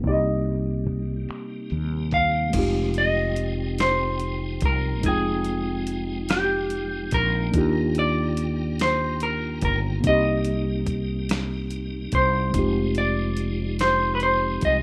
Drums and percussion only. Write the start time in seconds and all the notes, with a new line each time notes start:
0.03 kick, closed hi-hat
0.45 closed hi-hat
0.86 kick, closed hi-hat
1.29 finger snap, closed hi-hat
1.70 closed hi-hat
2.11 kick, closed hi-hat
2.53 kick, closed hi-hat, crash
2.94 closed hi-hat
3.36 closed hi-hat
3.78 snare, closed hi-hat
4.20 closed hi-hat
4.61 kick, closed hi-hat
5.03 kick, closed hi-hat
5.44 closed hi-hat
5.87 closed hi-hat
6.29 snare, closed hi-hat
6.70 closed hi-hat
7.11 kick, closed hi-hat
7.54 kick, closed hi-hat
7.95 closed hi-hat
8.37 closed hi-hat
8.79 snare, closed hi-hat
9.20 closed hi-hat
9.62 kick, closed hi-hat
10.04 kick, closed hi-hat
10.45 closed hi-hat
10.87 kick, closed hi-hat
11.29 snare, closed hi-hat
11.71 closed hi-hat
12.12 kick, closed hi-hat
12.54 kick, closed hi-hat
12.95 closed hi-hat
13.37 closed hi-hat
13.79 snare, closed hi-hat
14.20 closed hi-hat
14.61 kick, closed hi-hat